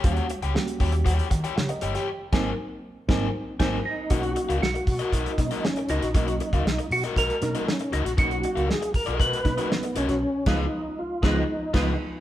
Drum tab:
CC |----------------|--x---------x---|----------------|----------------|
HH |xxxx-xoxxxxx-xxx|----------------|xxxx-xoxxxxx-xxx|xxxx-xoxxxxx-xxx|
SD |----o-----o-o--o|--o-----o---o---|----o-----o-o--o|----o-----o-o--o|
BD |o-----o-o-o-----|--o-----o---o---|o-----o-o-o-----|o--o----o-------|

CC |----------------|--x---------x---|
HH |xxxx-xoxxxxx-xxx|----------------|
SD |----o-----o-o--o|--o-----o---o---|
BD |o-----o-o-o-----|--o-----o---o---|